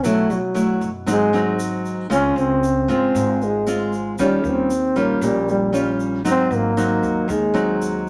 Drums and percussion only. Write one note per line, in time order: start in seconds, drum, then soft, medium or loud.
0.04 shaker medium
0.30 shaker soft
0.56 shaker medium
0.81 shaker soft
1.07 shaker medium
1.34 shaker soft
1.59 shaker medium
1.85 shaker soft
2.12 shaker medium
2.37 shaker soft
2.63 shaker medium
2.89 shaker soft
3.15 shaker medium
3.42 shaker soft
3.67 shaker medium
3.93 shaker soft
4.18 shaker medium
4.44 shaker soft
4.70 shaker medium
4.96 shaker soft
5.22 shaker medium
5.48 shaker soft
5.74 shaker medium
6.00 shaker soft
6.25 shaker medium
6.51 shaker soft
6.77 shaker medium
7.03 shaker soft
7.29 shaker medium
7.55 shaker soft
7.82 shaker medium